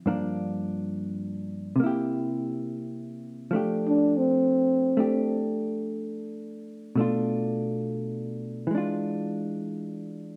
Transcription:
0.06 G2 F3 A#3 D4
1.76 C3
1.80 A#3 E4
1.86 G4
3.51 F3 A3 D4
3.56 G4
3.87 D4
4.17 C4
4.97 A3 D4 G4
6.96 B2 A3 D4
7.01 F4
8.67 E3 G#3
8.75 D4 F4

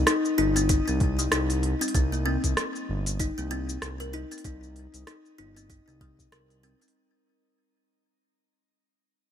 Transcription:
0.07 D#4, cross-stick, open hi-hat, cabasa
0.25 cabasa
0.38 G1 D#4, open hi-hat
0.56 C4, open hi-hat, cabasa
0.69 D#4, kick, open hi-hat, cabasa
0.88 C2 C4, cabasa
1.00 kick, open hi-hat
1.19 G3, cabasa
1.32 C2 D#4, cross-stick, open hi-hat, cabasa
1.50 open hi-hat, cabasa
1.63 open hi-hat
1.81 C4, open hi-hat, cabasa
1.88 open hi-hat
1.94 C2 C4, kick, open hi-hat, cabasa
2.12 A#3, cabasa
2.26 C4
2.44 C2, kick, open hi-hat, cabasa
2.57 cross-stick, open hi-hat, cabasa
2.76 cabasa
2.89 G1
3.06 open hi-hat, cabasa
3.20 D#4, kick, open hi-hat, cabasa
3.38 C2 A#3, cabasa
3.51 C4, open hi-hat
3.69 cabasa
3.82 C2, cross-stick, open hi-hat, cabasa
4.00 A#4, open hi-hat, cabasa
4.13 D#4, open hi-hat
4.31 C4, open hi-hat, cabasa
4.38 open hi-hat
4.44 C2 D#4, kick, open hi-hat, cabasa
4.63 cabasa
4.76 open hi-hat
4.94 C2, open hi-hat, cabasa
5.07 D#4, cross-stick, open hi-hat, cabasa
5.26 cabasa
5.38 G1 D#4, open hi-hat
5.56 C4, open hi-hat, cabasa
5.70 D#4, kick, open hi-hat, cabasa
5.88 C2 C4, cabasa
6.01 G3, kick, open hi-hat
6.19 kick, cabasa
6.32 C2 A#4, cross-stick, open hi-hat, cabasa
6.50 open hi-hat, cabasa
6.63 C4, open hi-hat
6.81 C4, open hi-hat, cabasa
6.88 open hi-hat

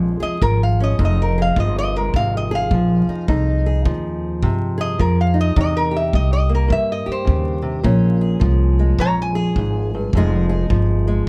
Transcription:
Already playing: A#1 F2 F3 G#3 C#4 G#4
0.20 G#4 D#5, muted upright bass stroke
0.42 G#1 F3 A#4, kick
0.63 F5
0.80 C#4 D#5
0.99 F1 F2 D#4, kick
1.05 D#5
1.22 A#4
1.38 G#4 F5
1.56 G1 F3 D#5, kick
1.78 D#5
1.96 G#3 A#4
2.14 G#1 C3 F5, kick
2.37 D#5
2.51 G#4 F5
2.71 A#1 F3, kick
3.07 D#4, muted upright bass stroke
3.28 C2 F2 D#4, kick
3.66 G#4
3.85 D#2 F3, kick
4.43 G2 C3, kick
4.78 G#4 D#5
4.99 F2 F3 A#4, kick
5.21 F5
5.34 D#4
5.41 D#5
5.56 E2 C3 D#4, kick
5.61 D#5
5.77 A#4
5.91 G4
5.96 E5
6.13 C2 D#5, kick
6.33 D#5
6.49 A#3
6.55 A#4
6.68 G2, kick
6.72 E5
6.92 D#5
7.06 G4, muted upright bass stroke
7.12 C5
7.25 D#2 C#3, kick
7.62 C3
7.83 A#1 A#2 C#4, kick
8.21 G#4
8.40 C2 F3, kick
8.79 G#3
8.99 A#1 F2 C#5 A#5, kick
9.22 G#5
9.35 G#4
9.56 G#1 G#2, kick
9.95 G2
10.13 F1 F2 F3 G#3 D#4, kick
10.18 G#4
10.49 G#4
10.70 G1 F3, kick
11.08 G#3

